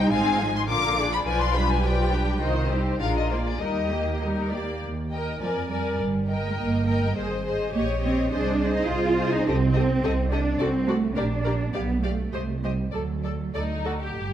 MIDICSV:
0, 0, Header, 1, 6, 480
1, 0, Start_track
1, 0, Tempo, 573614
1, 100, Time_signature, 2, 2, 24, 8
1, 2021, Tempo, 603015
1, 3941, Tempo, 584795
1, 5861, Tempo, 572519
1, 9701, Tempo, 600000
1, 11769, End_track
2, 0, Start_track
2, 0, Title_t, "Violin section"
2, 0, Program_c, 0, 48
2, 0, Note_on_c, 0, 79, 77
2, 94, Note_off_c, 0, 79, 0
2, 101, Note_on_c, 0, 80, 75
2, 451, Note_off_c, 0, 80, 0
2, 469, Note_on_c, 0, 84, 69
2, 515, Note_off_c, 0, 84, 0
2, 585, Note_on_c, 0, 86, 81
2, 933, Note_off_c, 0, 86, 0
2, 947, Note_on_c, 0, 83, 63
2, 993, Note_off_c, 0, 83, 0
2, 1060, Note_on_c, 0, 80, 70
2, 1176, Note_off_c, 0, 80, 0
2, 1182, Note_on_c, 0, 84, 71
2, 1300, Note_off_c, 0, 84, 0
2, 1302, Note_on_c, 0, 83, 65
2, 1419, Note_off_c, 0, 83, 0
2, 1433, Note_on_c, 0, 80, 62
2, 1542, Note_on_c, 0, 79, 64
2, 1545, Note_off_c, 0, 80, 0
2, 2023, Note_off_c, 0, 79, 0
2, 2491, Note_on_c, 0, 77, 64
2, 2602, Note_off_c, 0, 77, 0
2, 2618, Note_on_c, 0, 75, 46
2, 2729, Note_on_c, 0, 72, 49
2, 2732, Note_off_c, 0, 75, 0
2, 2777, Note_off_c, 0, 72, 0
2, 2857, Note_on_c, 0, 74, 46
2, 2969, Note_on_c, 0, 75, 47
2, 2973, Note_off_c, 0, 74, 0
2, 3456, Note_off_c, 0, 75, 0
2, 4174, Note_on_c, 0, 79, 38
2, 4414, Note_off_c, 0, 79, 0
2, 4419, Note_on_c, 0, 80, 36
2, 4651, Note_off_c, 0, 80, 0
2, 4661, Note_on_c, 0, 80, 35
2, 4897, Note_off_c, 0, 80, 0
2, 5143, Note_on_c, 0, 79, 39
2, 5606, Note_off_c, 0, 79, 0
2, 5616, Note_on_c, 0, 79, 40
2, 5853, Note_off_c, 0, 79, 0
2, 5854, Note_on_c, 0, 75, 39
2, 6096, Note_off_c, 0, 75, 0
2, 6108, Note_on_c, 0, 75, 43
2, 6340, Note_off_c, 0, 75, 0
2, 6350, Note_on_c, 0, 75, 45
2, 6572, Note_off_c, 0, 75, 0
2, 6583, Note_on_c, 0, 75, 48
2, 6815, Note_off_c, 0, 75, 0
2, 6825, Note_on_c, 0, 75, 45
2, 7045, Note_off_c, 0, 75, 0
2, 7055, Note_on_c, 0, 75, 54
2, 7529, Note_off_c, 0, 75, 0
2, 7541, Note_on_c, 0, 75, 49
2, 7778, Note_off_c, 0, 75, 0
2, 7797, Note_on_c, 0, 75, 57
2, 7864, Note_off_c, 0, 75, 0
2, 8024, Note_on_c, 0, 75, 51
2, 8091, Note_off_c, 0, 75, 0
2, 8273, Note_on_c, 0, 75, 57
2, 8340, Note_off_c, 0, 75, 0
2, 8509, Note_on_c, 0, 75, 49
2, 8576, Note_off_c, 0, 75, 0
2, 8735, Note_on_c, 0, 74, 57
2, 8802, Note_off_c, 0, 74, 0
2, 8976, Note_on_c, 0, 74, 46
2, 9043, Note_off_c, 0, 74, 0
2, 9217, Note_on_c, 0, 74, 49
2, 9284, Note_off_c, 0, 74, 0
2, 9453, Note_on_c, 0, 74, 43
2, 9520, Note_off_c, 0, 74, 0
2, 9699, Note_on_c, 0, 77, 48
2, 9763, Note_off_c, 0, 77, 0
2, 9932, Note_on_c, 0, 77, 44
2, 9996, Note_off_c, 0, 77, 0
2, 10164, Note_on_c, 0, 75, 40
2, 10228, Note_off_c, 0, 75, 0
2, 10414, Note_on_c, 0, 75, 35
2, 10478, Note_off_c, 0, 75, 0
2, 10644, Note_on_c, 0, 74, 35
2, 10708, Note_off_c, 0, 74, 0
2, 10896, Note_on_c, 0, 74, 35
2, 10960, Note_off_c, 0, 74, 0
2, 11136, Note_on_c, 0, 74, 32
2, 11200, Note_off_c, 0, 74, 0
2, 11381, Note_on_c, 0, 74, 30
2, 11445, Note_off_c, 0, 74, 0
2, 11769, End_track
3, 0, Start_track
3, 0, Title_t, "Violin section"
3, 0, Program_c, 1, 48
3, 0, Note_on_c, 1, 63, 45
3, 0, Note_on_c, 1, 72, 46
3, 103, Note_on_c, 1, 65, 52
3, 105, Note_off_c, 1, 72, 0
3, 105, Note_on_c, 1, 77, 49
3, 107, Note_off_c, 1, 63, 0
3, 323, Note_off_c, 1, 65, 0
3, 324, Note_off_c, 1, 77, 0
3, 341, Note_on_c, 1, 80, 42
3, 345, Note_on_c, 1, 68, 46
3, 579, Note_off_c, 1, 80, 0
3, 581, Note_off_c, 1, 68, 0
3, 588, Note_on_c, 1, 70, 46
3, 592, Note_on_c, 1, 77, 46
3, 806, Note_off_c, 1, 70, 0
3, 808, Note_off_c, 1, 77, 0
3, 831, Note_on_c, 1, 68, 42
3, 831, Note_on_c, 1, 74, 43
3, 1056, Note_off_c, 1, 74, 0
3, 1063, Note_off_c, 1, 68, 0
3, 1067, Note_on_c, 1, 74, 49
3, 1070, Note_on_c, 1, 71, 43
3, 1285, Note_off_c, 1, 71, 0
3, 1285, Note_off_c, 1, 74, 0
3, 1295, Note_on_c, 1, 71, 38
3, 1299, Note_on_c, 1, 67, 38
3, 1534, Note_off_c, 1, 71, 0
3, 1539, Note_off_c, 1, 67, 0
3, 1544, Note_on_c, 1, 71, 43
3, 1547, Note_on_c, 1, 74, 40
3, 1775, Note_off_c, 1, 71, 0
3, 1783, Note_off_c, 1, 74, 0
3, 1783, Note_on_c, 1, 67, 38
3, 1785, Note_on_c, 1, 71, 38
3, 2019, Note_on_c, 1, 72, 39
3, 2020, Note_on_c, 1, 75, 46
3, 2023, Note_off_c, 1, 67, 0
3, 2024, Note_off_c, 1, 71, 0
3, 2237, Note_off_c, 1, 72, 0
3, 2237, Note_off_c, 1, 75, 0
3, 2254, Note_on_c, 1, 72, 34
3, 2255, Note_on_c, 1, 67, 38
3, 2491, Note_off_c, 1, 72, 0
3, 2492, Note_off_c, 1, 67, 0
3, 2494, Note_on_c, 1, 65, 37
3, 2494, Note_on_c, 1, 70, 37
3, 2715, Note_off_c, 1, 70, 0
3, 2716, Note_off_c, 1, 65, 0
3, 2738, Note_on_c, 1, 68, 33
3, 2740, Note_on_c, 1, 74, 34
3, 2972, Note_on_c, 1, 70, 35
3, 2975, Note_off_c, 1, 70, 0
3, 2975, Note_on_c, 1, 70, 36
3, 2977, Note_off_c, 1, 68, 0
3, 2978, Note_off_c, 1, 74, 0
3, 3200, Note_off_c, 1, 70, 0
3, 3209, Note_on_c, 1, 67, 31
3, 3211, Note_on_c, 1, 75, 30
3, 3448, Note_on_c, 1, 70, 39
3, 3455, Note_off_c, 1, 67, 0
3, 3456, Note_off_c, 1, 75, 0
3, 3678, Note_off_c, 1, 70, 0
3, 3684, Note_on_c, 1, 74, 42
3, 3931, Note_off_c, 1, 74, 0
3, 4177, Note_on_c, 1, 75, 36
3, 4416, Note_off_c, 1, 75, 0
3, 4425, Note_on_c, 1, 74, 37
3, 4653, Note_off_c, 1, 74, 0
3, 4662, Note_on_c, 1, 74, 37
3, 4898, Note_off_c, 1, 74, 0
3, 5139, Note_on_c, 1, 75, 39
3, 5609, Note_off_c, 1, 75, 0
3, 5632, Note_on_c, 1, 75, 40
3, 5861, Note_off_c, 1, 75, 0
3, 5867, Note_on_c, 1, 72, 43
3, 6094, Note_off_c, 1, 72, 0
3, 6104, Note_on_c, 1, 72, 42
3, 6340, Note_off_c, 1, 72, 0
3, 6345, Note_on_c, 1, 73, 45
3, 6576, Note_off_c, 1, 73, 0
3, 6586, Note_on_c, 1, 73, 43
3, 6819, Note_off_c, 1, 73, 0
3, 6821, Note_on_c, 1, 72, 48
3, 7050, Note_off_c, 1, 72, 0
3, 7060, Note_on_c, 1, 72, 42
3, 7531, Note_off_c, 1, 72, 0
3, 7547, Note_on_c, 1, 72, 47
3, 7781, Note_off_c, 1, 72, 0
3, 7790, Note_on_c, 1, 69, 55
3, 7857, Note_off_c, 1, 69, 0
3, 8024, Note_on_c, 1, 69, 46
3, 8091, Note_off_c, 1, 69, 0
3, 8265, Note_on_c, 1, 69, 53
3, 8332, Note_off_c, 1, 69, 0
3, 8507, Note_on_c, 1, 69, 50
3, 8574, Note_off_c, 1, 69, 0
3, 8742, Note_on_c, 1, 69, 55
3, 8809, Note_off_c, 1, 69, 0
3, 8968, Note_on_c, 1, 69, 41
3, 9035, Note_off_c, 1, 69, 0
3, 9213, Note_on_c, 1, 70, 50
3, 9280, Note_off_c, 1, 70, 0
3, 9446, Note_on_c, 1, 70, 44
3, 9513, Note_off_c, 1, 70, 0
3, 9692, Note_on_c, 1, 74, 45
3, 9756, Note_off_c, 1, 74, 0
3, 9931, Note_on_c, 1, 74, 41
3, 9995, Note_off_c, 1, 74, 0
3, 10168, Note_on_c, 1, 72, 43
3, 10232, Note_off_c, 1, 72, 0
3, 10415, Note_on_c, 1, 72, 35
3, 10479, Note_off_c, 1, 72, 0
3, 10664, Note_on_c, 1, 69, 35
3, 10728, Note_off_c, 1, 69, 0
3, 10906, Note_on_c, 1, 69, 30
3, 10970, Note_off_c, 1, 69, 0
3, 11146, Note_on_c, 1, 74, 46
3, 11148, Note_on_c, 1, 63, 50
3, 11210, Note_off_c, 1, 74, 0
3, 11388, Note_on_c, 1, 66, 41
3, 11452, Note_off_c, 1, 66, 0
3, 11483, Note_off_c, 1, 63, 0
3, 11509, Note_on_c, 1, 67, 51
3, 11769, Note_off_c, 1, 67, 0
3, 11769, End_track
4, 0, Start_track
4, 0, Title_t, "Viola section"
4, 0, Program_c, 2, 48
4, 0, Note_on_c, 2, 55, 51
4, 0, Note_on_c, 2, 63, 48
4, 96, Note_off_c, 2, 55, 0
4, 96, Note_off_c, 2, 63, 0
4, 97, Note_on_c, 2, 60, 53
4, 99, Note_on_c, 2, 56, 51
4, 320, Note_off_c, 2, 60, 0
4, 321, Note_off_c, 2, 56, 0
4, 333, Note_on_c, 2, 56, 50
4, 334, Note_on_c, 2, 53, 47
4, 571, Note_on_c, 2, 50, 50
4, 571, Note_on_c, 2, 65, 50
4, 575, Note_off_c, 2, 53, 0
4, 575, Note_off_c, 2, 56, 0
4, 797, Note_off_c, 2, 50, 0
4, 797, Note_off_c, 2, 65, 0
4, 811, Note_on_c, 2, 62, 45
4, 814, Note_on_c, 2, 53, 49
4, 1031, Note_off_c, 2, 53, 0
4, 1041, Note_on_c, 2, 53, 51
4, 1041, Note_on_c, 2, 65, 47
4, 1053, Note_off_c, 2, 62, 0
4, 1271, Note_off_c, 2, 65, 0
4, 1272, Note_off_c, 2, 53, 0
4, 1285, Note_on_c, 2, 62, 42
4, 1289, Note_on_c, 2, 55, 45
4, 1528, Note_on_c, 2, 53, 44
4, 1528, Note_on_c, 2, 65, 45
4, 1532, Note_off_c, 2, 62, 0
4, 1533, Note_off_c, 2, 55, 0
4, 1773, Note_off_c, 2, 65, 0
4, 1773, Note_on_c, 2, 55, 45
4, 1774, Note_off_c, 2, 53, 0
4, 1774, Note_on_c, 2, 62, 41
4, 2012, Note_on_c, 2, 51, 44
4, 2013, Note_on_c, 2, 63, 45
4, 2018, Note_off_c, 2, 55, 0
4, 2018, Note_off_c, 2, 62, 0
4, 2233, Note_off_c, 2, 51, 0
4, 2234, Note_off_c, 2, 63, 0
4, 2245, Note_on_c, 2, 60, 40
4, 2247, Note_on_c, 2, 55, 38
4, 2487, Note_off_c, 2, 55, 0
4, 2487, Note_off_c, 2, 60, 0
4, 2488, Note_on_c, 2, 56, 38
4, 2489, Note_on_c, 2, 62, 38
4, 2712, Note_off_c, 2, 56, 0
4, 2713, Note_off_c, 2, 62, 0
4, 2724, Note_on_c, 2, 58, 35
4, 2726, Note_on_c, 2, 65, 34
4, 2969, Note_off_c, 2, 58, 0
4, 2970, Note_off_c, 2, 65, 0
4, 2970, Note_on_c, 2, 63, 34
4, 2971, Note_on_c, 2, 55, 35
4, 3198, Note_off_c, 2, 55, 0
4, 3198, Note_off_c, 2, 63, 0
4, 3206, Note_on_c, 2, 58, 31
4, 3209, Note_on_c, 2, 67, 31
4, 3452, Note_on_c, 2, 55, 35
4, 3453, Note_off_c, 2, 58, 0
4, 3454, Note_on_c, 2, 63, 35
4, 3455, Note_off_c, 2, 67, 0
4, 3694, Note_on_c, 2, 67, 32
4, 3695, Note_on_c, 2, 58, 33
4, 3697, Note_off_c, 2, 55, 0
4, 3698, Note_off_c, 2, 63, 0
4, 3936, Note_off_c, 2, 58, 0
4, 3936, Note_off_c, 2, 67, 0
4, 4188, Note_on_c, 2, 70, 35
4, 4414, Note_off_c, 2, 70, 0
4, 4424, Note_on_c, 2, 70, 36
4, 4658, Note_off_c, 2, 70, 0
4, 4669, Note_on_c, 2, 70, 38
4, 4901, Note_off_c, 2, 70, 0
4, 5141, Note_on_c, 2, 70, 42
4, 5607, Note_off_c, 2, 70, 0
4, 5616, Note_on_c, 2, 70, 42
4, 5853, Note_off_c, 2, 70, 0
4, 5868, Note_on_c, 2, 68, 39
4, 6096, Note_off_c, 2, 68, 0
4, 6106, Note_on_c, 2, 68, 45
4, 6340, Note_on_c, 2, 67, 49
4, 6341, Note_off_c, 2, 68, 0
4, 6576, Note_off_c, 2, 67, 0
4, 6592, Note_on_c, 2, 67, 45
4, 6820, Note_on_c, 2, 68, 50
4, 6822, Note_off_c, 2, 67, 0
4, 7056, Note_off_c, 2, 68, 0
4, 7071, Note_on_c, 2, 68, 53
4, 7537, Note_off_c, 2, 68, 0
4, 7555, Note_on_c, 2, 68, 50
4, 7785, Note_off_c, 2, 68, 0
4, 7794, Note_on_c, 2, 67, 58
4, 7861, Note_off_c, 2, 67, 0
4, 8035, Note_on_c, 2, 67, 51
4, 8102, Note_off_c, 2, 67, 0
4, 8265, Note_on_c, 2, 67, 52
4, 8332, Note_off_c, 2, 67, 0
4, 8501, Note_on_c, 2, 67, 48
4, 8568, Note_off_c, 2, 67, 0
4, 8740, Note_on_c, 2, 66, 52
4, 8807, Note_off_c, 2, 66, 0
4, 8978, Note_on_c, 2, 66, 54
4, 9045, Note_off_c, 2, 66, 0
4, 9223, Note_on_c, 2, 67, 49
4, 9290, Note_off_c, 2, 67, 0
4, 9455, Note_on_c, 2, 67, 46
4, 9522, Note_off_c, 2, 67, 0
4, 9695, Note_on_c, 2, 67, 47
4, 9759, Note_off_c, 2, 67, 0
4, 9931, Note_on_c, 2, 67, 41
4, 9995, Note_off_c, 2, 67, 0
4, 10165, Note_on_c, 2, 67, 41
4, 10229, Note_off_c, 2, 67, 0
4, 10411, Note_on_c, 2, 67, 38
4, 10475, Note_off_c, 2, 67, 0
4, 10658, Note_on_c, 2, 69, 38
4, 10722, Note_off_c, 2, 69, 0
4, 10903, Note_on_c, 2, 69, 34
4, 10967, Note_off_c, 2, 69, 0
4, 11150, Note_on_c, 2, 69, 37
4, 11214, Note_off_c, 2, 69, 0
4, 11385, Note_on_c, 2, 69, 33
4, 11449, Note_off_c, 2, 69, 0
4, 11769, End_track
5, 0, Start_track
5, 0, Title_t, "Cello section"
5, 0, Program_c, 3, 48
5, 0, Note_on_c, 3, 63, 64
5, 579, Note_on_c, 3, 62, 48
5, 581, Note_off_c, 3, 63, 0
5, 1048, Note_off_c, 3, 62, 0
5, 1057, Note_on_c, 3, 65, 55
5, 1530, Note_on_c, 3, 67, 50
5, 1537, Note_off_c, 3, 65, 0
5, 2007, Note_off_c, 3, 67, 0
5, 2018, Note_on_c, 3, 65, 46
5, 2253, Note_off_c, 3, 65, 0
5, 2255, Note_on_c, 3, 63, 42
5, 2492, Note_off_c, 3, 63, 0
5, 2494, Note_on_c, 3, 65, 44
5, 2970, Note_on_c, 3, 67, 44
5, 2974, Note_off_c, 3, 65, 0
5, 3685, Note_off_c, 3, 67, 0
5, 4412, Note_on_c, 3, 53, 47
5, 4478, Note_off_c, 3, 53, 0
5, 4656, Note_on_c, 3, 55, 58
5, 4889, Note_off_c, 3, 55, 0
5, 4899, Note_on_c, 3, 55, 58
5, 5253, Note_off_c, 3, 55, 0
5, 5268, Note_on_c, 3, 56, 54
5, 5314, Note_off_c, 3, 56, 0
5, 5389, Note_on_c, 3, 58, 56
5, 5737, Note_off_c, 3, 58, 0
5, 5751, Note_on_c, 3, 55, 50
5, 5865, Note_off_c, 3, 55, 0
5, 6350, Note_on_c, 3, 58, 63
5, 6417, Note_off_c, 3, 58, 0
5, 6591, Note_on_c, 3, 60, 71
5, 6821, Note_off_c, 3, 60, 0
5, 6822, Note_on_c, 3, 62, 82
5, 7174, Note_off_c, 3, 62, 0
5, 7189, Note_on_c, 3, 63, 77
5, 7298, Note_on_c, 3, 65, 83
5, 7303, Note_off_c, 3, 63, 0
5, 7661, Note_off_c, 3, 65, 0
5, 7676, Note_on_c, 3, 63, 80
5, 7790, Note_off_c, 3, 63, 0
5, 7790, Note_on_c, 3, 60, 88
5, 8503, Note_on_c, 3, 62, 81
5, 8507, Note_off_c, 3, 60, 0
5, 8737, Note_off_c, 3, 62, 0
5, 8744, Note_on_c, 3, 60, 80
5, 8977, Note_on_c, 3, 57, 74
5, 8981, Note_off_c, 3, 60, 0
5, 9215, Note_on_c, 3, 62, 66
5, 9216, Note_off_c, 3, 57, 0
5, 9698, Note_on_c, 3, 59, 77
5, 9699, Note_off_c, 3, 62, 0
5, 9927, Note_on_c, 3, 57, 68
5, 9930, Note_off_c, 3, 59, 0
5, 10399, Note_off_c, 3, 57, 0
5, 10410, Note_on_c, 3, 55, 57
5, 10650, Note_on_c, 3, 54, 54
5, 10654, Note_off_c, 3, 55, 0
5, 11368, Note_off_c, 3, 54, 0
5, 11769, End_track
6, 0, Start_track
6, 0, Title_t, "Double bass section"
6, 0, Program_c, 4, 48
6, 107, Note_on_c, 4, 32, 56
6, 580, Note_on_c, 4, 34, 54
6, 581, Note_off_c, 4, 32, 0
6, 1056, Note_on_c, 4, 35, 60
6, 1058, Note_off_c, 4, 34, 0
6, 2001, Note_off_c, 4, 35, 0
6, 2020, Note_on_c, 4, 36, 54
6, 2482, Note_off_c, 4, 36, 0
6, 2487, Note_on_c, 4, 34, 39
6, 2961, Note_off_c, 4, 34, 0
6, 2971, Note_on_c, 4, 39, 41
6, 3759, Note_off_c, 4, 39, 0
6, 3942, Note_on_c, 4, 39, 51
6, 4368, Note_off_c, 4, 39, 0
6, 4427, Note_on_c, 4, 41, 50
6, 4848, Note_off_c, 4, 41, 0
6, 4907, Note_on_c, 4, 31, 49
6, 5327, Note_off_c, 4, 31, 0
6, 5386, Note_on_c, 4, 31, 49
6, 5806, Note_off_c, 4, 31, 0
6, 5864, Note_on_c, 4, 32, 61
6, 6290, Note_off_c, 4, 32, 0
6, 6346, Note_on_c, 4, 34, 53
6, 6767, Note_off_c, 4, 34, 0
6, 6834, Note_on_c, 4, 36, 64
6, 7250, Note_off_c, 4, 36, 0
6, 7304, Note_on_c, 4, 36, 63
6, 7728, Note_off_c, 4, 36, 0
6, 7796, Note_on_c, 4, 36, 72
6, 8214, Note_off_c, 4, 36, 0
6, 8276, Note_on_c, 4, 36, 65
6, 8692, Note_off_c, 4, 36, 0
6, 8740, Note_on_c, 4, 36, 74
6, 9160, Note_off_c, 4, 36, 0
6, 9216, Note_on_c, 4, 34, 63
6, 9642, Note_off_c, 4, 34, 0
6, 9699, Note_on_c, 4, 35, 61
6, 10117, Note_off_c, 4, 35, 0
6, 10169, Note_on_c, 4, 36, 47
6, 10596, Note_off_c, 4, 36, 0
6, 10652, Note_on_c, 4, 38, 46
6, 11084, Note_off_c, 4, 38, 0
6, 11137, Note_on_c, 4, 38, 39
6, 11566, Note_off_c, 4, 38, 0
6, 11624, Note_on_c, 4, 31, 51
6, 11769, Note_off_c, 4, 31, 0
6, 11769, End_track
0, 0, End_of_file